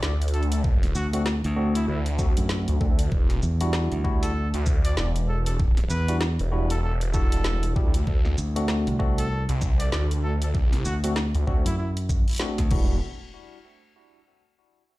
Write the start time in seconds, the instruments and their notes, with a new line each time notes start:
0.02 detuned saw bass D2, trumpet D5, snare
0.22 closed hi-hat
0.28 closed hi-hat
0.33 trumpet A4, closed hi-hat
0.43 closed hi-hat
0.52 trumpet A4, closed hi-hat
0.64 kick
0.83 snare, closed hi-hat
0.95 fingered electric bass D2, trumpet F#4, shaker
1.13 tine electric piano A3 C4 D4 F#4, trumpet F#4, closed hi-hat
1.26 snare
1.44 fingered electric bass D2, closed hi-hat
1.56 tine electric piano A3 C4 D4 F#4
1.75 trumpet E4, closed hi-hat
1.88 detuned saw bass D2, trumpet E4
2.06 closed hi-hat
2.18 tine electric piano A3 C4 D4 F#4, kick, shaker
2.37 fingered electric bass F#2, closed hi-hat
2.49 snare
2.68 detuned saw bass D2, closed hi-hat
2.80 detuned saw bass D2, tine electric piano A3 C4 D4 A4, kick
2.99 closed hi-hat
3.12 detuned saw bass E1, kick
3.30 snare, closed hi-hat
3.42 fingered electric bass E2, shaker
3.61 tine electric piano G3 D4 E4 F#4, closed hi-hat
3.73 snare
3.92 fingered electric bass D2, closed hi-hat
4.04 tine electric piano G3 D4 E4 F#4, kick
4.22 trumpet A4, closed hi-hat
4.54 detuned saw bass D2, closed hi-hat
4.66 kick, shaker
4.85 trumpet D5, closed hi-hat
4.97 detuned saw bass E1, trumpet D5, snare
5.16 closed hi-hat
5.28 trumpet A4
5.45 trumpet A4, closed hi-hat
5.60 kick
5.77 snare, closed hi-hat
5.90 fingered electric bass E2, trumpet B4, shaker
6.08 tine electric piano G3 D4 E4 F#4, closed hi-hat
6.21 snare
6.39 detuned saw bass E1, closed hi-hat
6.52 tine electric piano G3 D4 E4 F#4
6.70 trumpet A4, closed hi-hat
6.83 trumpet A4
7.01 closed hi-hat
7.13 tine electric piano G3 D4 E4 F#4, trumpet A4, kick, shaker
7.32 detuned saw bass E1, closed hi-hat
7.44 snare
7.63 closed hi-hat
7.76 detuned saw bass D2, tine electric piano G3 D4 E4 G4, kick
7.94 closed hi-hat
8.07 detuned saw bass D2, kick
8.25 snare
8.38 fingered electric bass D2, shaker
8.56 tine electric piano A3 C4 D4 F#4, closed hi-hat
8.68 snare
8.87 fingered electric bass C2, closed hi-hat
8.99 tine electric piano A3 C4 D4 F#4, kick
9.18 trumpet A4, closed hi-hat
9.49 detuned saw bass C2, closed hi-hat
9.61 kick, shaker
9.79 trumpet D5, closed hi-hat
9.92 detuned saw bass D2, trumpet D5, snare
10.11 closed hi-hat
10.23 trumpet A4
10.42 trumpet A4, closed hi-hat
10.55 detuned saw bass C#2, kick
10.73 snare, closed hi-hat
10.85 fingered electric bass D2, trumpet F#4, shaker
11.03 tine electric piano A3 C4 D4 F#4, trumpet F#4, closed hi-hat
11.16 snare
11.35 detuned saw bass D2, closed hi-hat
11.47 detuned saw bass D2, tine electric piano A3 C4 D4 F#4, kick
11.66 fingered electric bass F#2, trumpet E4, closed hi-hat
11.78 trumpet E4
11.97 closed hi-hat
12.09 kick, shaker
12.28 closed hi-hat
12.29 closed hi-hat
12.31 closed hi-hat
12.33 closed hi-hat
12.35 closed hi-hat
12.36 closed hi-hat
12.38 tine electric piano A3 C4 D4 F#4, snare, closed hi-hat
12.58 fingered electric bass D2, kick, snare, closed hi-hat
12.71 detuned saw bass E1, tine electric piano G3 D4 E4 F#4, kick, crash